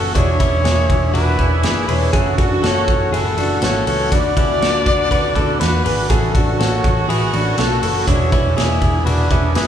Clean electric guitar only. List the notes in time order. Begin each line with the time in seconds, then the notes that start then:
Already playing: F#4 A4
0.15 D4 F#4
0.40 C#4 E4
0.64 E4 G#4
1.14 D4 F#4
1.39 C#4 E4
1.64 E4 G#4
1.88 G#4 B4
2.13 E4 G#4
2.38 D4 F#4
2.63 F#4 A4
3.13 E4 G#4
3.37 D4 F#4
3.63 F#4 A4
3.87 F#4 A4
4.12 D4 F#4
4.37 C#4 E4
4.62 D4 F#4
5.11 F#4 B4
5.36 F#4 A4
5.60 F#4 B4
5.85 G#4 B4
6.10 E4 G#4
6.34 D4 F#4
6.59 F#4 A4
7.09 E4 G#4
7.33 D4 F#4
7.58 F#4 A4
7.83 F#4 A4
8.08 D4 F#4
8.32 C#4 E4
8.57 E4 G#4
9.06 D4 F#4
9.31 C#4 E4
9.56 E4 G#4